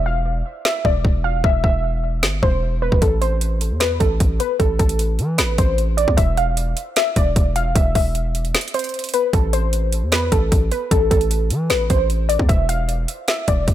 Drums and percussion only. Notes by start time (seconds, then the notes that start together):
0.65 snare
0.85 kick
1.05 kick
1.44 kick
1.64 kick
2.23 snare
2.43 kick
2.92 kick
3.02 kick, closed hi-hat
3.22 closed hi-hat
3.41 closed hi-hat
3.61 closed hi-hat
3.80 snare, closed hi-hat
4.00 kick, closed hi-hat
4.20 kick, closed hi-hat
4.40 closed hi-hat
4.60 kick, closed hi-hat
4.79 kick, closed hi-hat
4.89 closed hi-hat
4.99 closed hi-hat
5.19 closed hi-hat
5.38 snare, closed hi-hat
5.58 kick, closed hi-hat
5.78 closed hi-hat
5.98 closed hi-hat
6.08 kick
6.18 kick, closed hi-hat
6.37 closed hi-hat
6.57 closed hi-hat
6.77 closed hi-hat
6.96 snare, closed hi-hat
7.16 kick, closed hi-hat
7.36 kick, closed hi-hat
7.56 closed hi-hat
7.76 kick, closed hi-hat
7.95 kick, open hi-hat
8.15 closed hi-hat
8.35 closed hi-hat
8.45 closed hi-hat
8.55 snare, closed hi-hat
8.61 closed hi-hat
8.68 closed hi-hat
8.74 closed hi-hat
8.79 closed hi-hat
8.84 closed hi-hat
8.89 closed hi-hat
8.94 closed hi-hat
8.99 closed hi-hat
9.04 closed hi-hat
9.09 closed hi-hat
9.14 closed hi-hat
9.33 kick, closed hi-hat
9.53 closed hi-hat
9.73 closed hi-hat
9.93 closed hi-hat
10.12 snare, closed hi-hat
10.32 kick, closed hi-hat
10.52 kick, closed hi-hat
10.72 closed hi-hat
10.91 kick, closed hi-hat
11.11 kick, closed hi-hat
11.21 closed hi-hat
11.31 closed hi-hat
11.50 closed hi-hat
11.70 snare, closed hi-hat
11.90 kick, closed hi-hat
12.10 closed hi-hat
12.29 closed hi-hat
12.39 kick
12.49 kick, closed hi-hat
12.69 closed hi-hat
12.89 closed hi-hat
13.08 closed hi-hat
13.28 snare, closed hi-hat
13.48 kick, closed hi-hat
13.68 kick, closed hi-hat